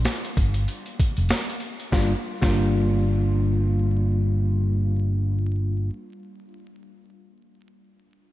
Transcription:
0.05 cross-stick medium
0.05 snare loud
0.05 closed hi-hat medium
0.25 closed hi-hat soft
0.37 0.65 G1 medium
0.37 kick medium
0.37 closed hi-hat medium
0.54 closed hi-hat soft
0.68 closed hi-hat medium
0.86 closed hi-hat medium
1.00 kick medium
1.00 closed hi-hat medium
1.17 1.29 F1 medium
1.17 closed hi-hat soft
1.29 cross-stick loud
1.29 snare loud
1.29 closed hi-hat medium
1.50 closed hi-hat medium
1.60 closed hi-hat medium
1.80 closed hi-hat soft
1.92 2.12 G1 medium
1.92 2.12 G3 medium
1.92 2.12 A#3 medium
1.92 2.12 D4 medium
1.92 2.13 F4 medium
1.92 kick loud
1.92 snare medium
2.42 5.89 G1 loud
2.42 5.88 G3 medium
2.42 5.88 A#3 medium
2.42 5.89 D4 medium
2.42 5.89 F4 medium
2.42 kick loud
2.42 snare medium

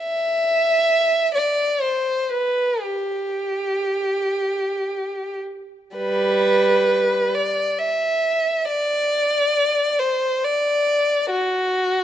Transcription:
0.00 1.31 E5 medium
1.34 1.82 D5 medium
1.82 2.31 C5 soft
2.32 2.82 B4 medium
2.83 5.40 G4 soft
5.97 7.31 G3 medium
5.97 7.31 B4 medium
7.35 7.79 D5 medium
7.78 8.68 E5 medium
8.68 9.97 D5 medium
9.99 10.43 C5 medium
10.44 11.30 D5 medium
11.30 12.04 F#4 medium

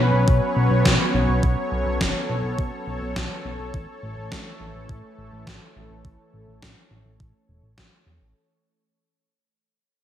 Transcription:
0.00 0.12 B1 loud
0.00 3.70 F#3 medium
0.00 3.70 B3 medium
0.00 8.32 C#4 medium
0.00 1.39 B4 medium
0.00 8.31 C#5 medium
0.13 0.26 B1 medium
0.28 0.41 B1 loud
0.28 kick loud
0.56 0.70 B1 medium
0.71 0.84 B1 medium
0.85 0.98 B1 loud
0.85 kick loud
0.85 snare loud
1.14 1.27 B1 medium
1.29 1.42 B1 medium
1.43 1.56 B1 loud
1.43 8.32 A4 medium
1.43 kick loud
1.72 1.85 B1 medium
1.86 1.99 B1 medium
2.01 2.14 F#1 loud
2.01 kick loud
2.01 snare loud
2.30 2.43 B1 medium
2.44 2.57 B1 medium
2.58 2.71 B1 loud
2.58 kick loud
2.87 3.00 B1 medium
3.02 3.15 B1 medium
3.16 3.29 B1 loud
3.16 kick loud
3.16 snare loud
3.45 3.58 B1 loud
3.59 3.72 B1 medium
3.74 3.87 A1 loud
3.74 8.32 E3 medium
3.74 8.32 A3 medium
3.74 kick loud
4.03 4.16 A1 medium
4.17 4.30 A1 medium
4.32 4.45 A2 loud
4.32 kick loud
4.32 snare loud
4.60 4.73 A1 medium
4.75 4.88 A1 medium
4.89 5.02 A1 loud
4.89 kick loud
5.18 5.31 A1 medium
5.33 5.46 A1 medium
5.47 5.60 A1 loud
5.47 kick loud
5.47 snare loud
5.76 5.89 A1 medium
5.90 6.03 A1 medium
6.05 6.18 A1 loud
6.05 kick loud
6.34 6.47 A1 medium
6.48 6.61 A1 medium
6.62 6.75 A2 loud
6.62 kick loud
6.62 snare loud
6.91 7.04 A1 medium
7.06 7.19 A1 medium
7.20 7.33 A1 medium
7.20 kick loud
7.49 7.62 E1 medium
7.63 7.76 A1 medium
7.78 7.91 A1 loud
7.78 kick loud
7.78 snare loud
8.06 8.20 E2 medium
8.21 8.34 A1 medium

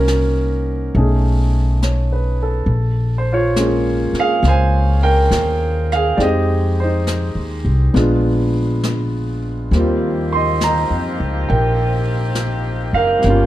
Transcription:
0.00 0.90 C2 medium
0.00 0.93 A#3 soft
0.00 0.62 C#4 medium
0.00 0.95 D#4 soft
0.00 0.96 F#4 medium
0.00 0.62 A#4 medium
0.00 0.94 C5 soft
0.08 snare soft
0.08 hi-hat pedal soft
0.94 2.65 B1 medium
0.94 2.69 A3 soft
0.94 2.69 C#4 soft
0.94 2.70 D#4 soft
0.94 2.70 G#4 soft
0.94 brush sweep soft
1.82 2.36 C#5 soft
1.82 snare soft
1.82 hi-hat pedal soft
2.12 2.56 B4 soft
2.43 2.86 A4 soft
2.66 4.08 A#1 medium
2.66 brush sweep soft
3.18 3.26 C5 medium
3.32 3.59 F4 medium
3.32 4.19 C#5 medium
3.56 6.16 G#3 soft
3.56 6.19 A#3 soft
3.56 6.19 C#4 soft
3.56 snare soft
3.56 hi-hat pedal soft
3.60 6.20 F4 medium
4.12 muted upright bass stroke soft
4.12 snare soft
4.19 4.44 G#4 medium
4.19 4.47 F5 medium
4.43 5.26 C#2 medium
4.43 brush sweep soft
4.43 snare soft
4.48 4.99 C5 medium
4.48 5.00 G#5 medium
5.03 5.86 A#4 medium
5.03 5.92 G5 medium
5.31 6.14 D#2 medium
5.31 snare soft
5.31 hi-hat pedal soft
5.92 6.15 G#4 medium
5.92 6.16 F5 medium
5.92 snare soft
6.17 7.31 F2 medium
6.17 7.92 G#3 medium
6.17 7.94 C4 medium
6.17 6.82 D#4 medium
6.17 6.23 G4 medium
6.17 6.20 D5 medium
6.17 brush sweep soft
6.17 snare soft
6.22 6.75 G4 medium
6.22 6.74 D#5 medium
6.80 7.64 D#4 medium
6.80 7.62 C5 medium
7.07 snare soft
7.07 hi-hat pedal soft
7.35 7.62 D#2 medium
7.65 7.92 C2 medium
7.94 9.68 A#1 medium
7.94 9.72 G#3 medium
7.94 9.72 B3 soft
7.94 9.73 D4 soft
7.94 9.73 F4 medium
7.94 brush sweep soft
7.94 snare soft
8.83 snare soft
8.83 hi-hat pedal soft
9.71 10.86 D#2 medium
9.71 13.20 F3 medium
9.71 13.17 G3 soft
9.71 13.46 A#3 medium
9.71 13.21 A#3 soft
9.71 13.20 C4 medium
9.71 13.25 C4 soft
9.71 13.20 D#4 medium
9.71 13.20 G4 medium
9.71 brush sweep soft
9.71 snare soft
9.77 13.26 F4 medium
10.33 10.61 D#5 medium
10.33 10.63 C6 medium
10.61 11.47 D#5 medium
10.61 11.53 A#5 medium
10.61 snare soft
10.61 hi-hat pedal medium
10.90 11.17 F2 soft
11.20 11.47 C#2 medium
11.48 12.90 A#1 medium
11.48 12.32 A#4 soft
11.48 12.32 G5 medium
11.48 brush sweep soft
12.35 snare soft
12.35 hi-hat pedal soft
12.93 13.21 F#1 medium
12.93 13.46 A#4 medium
12.93 13.46 F5 medium
13.19 13.46 G3 soft
13.19 13.46 A#3 soft
13.19 brush sweep soft
13.19 snare soft
13.23 13.46 G1 medium
13.23 13.46 F3 medium
13.23 13.46 G3 medium
13.23 13.46 C#4 medium
13.23 13.46 C#4 soft
13.23 13.46 G4 medium
13.30 13.46 F4 medium

